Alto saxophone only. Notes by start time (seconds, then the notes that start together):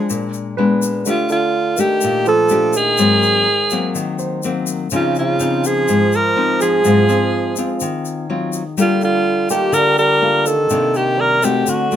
Already playing: G#4
1.09 F4
1.32 F4
1.80 G4
2.29 A4
2.77 G#4
4.96 F4
5.19 F4
5.66 G#4
6.16 A#4
6.62 G#4
8.81 F4
9.05 F4
9.51 G4
9.74 A#4
9.98 A#4
10.46 A4
10.97 G4
11.20 A#4
11.45 G4
11.69 F#4